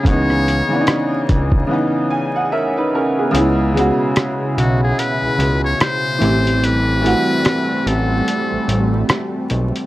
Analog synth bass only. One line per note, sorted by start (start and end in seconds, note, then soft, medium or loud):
0.05 0.62 C#2 loud
1.29 1.65 C#2 loud
3.34 3.91 C#2 medium
4.58 4.93 B1 medium
5.23 5.29 C#2 soft
5.38 5.75 C#2 medium
6.21 7.15 A1 loud
7.86 8.22 A1 loud
8.52 8.59 A1 soft
8.68 9.04 A1 medium
9.51 9.72 B1 medium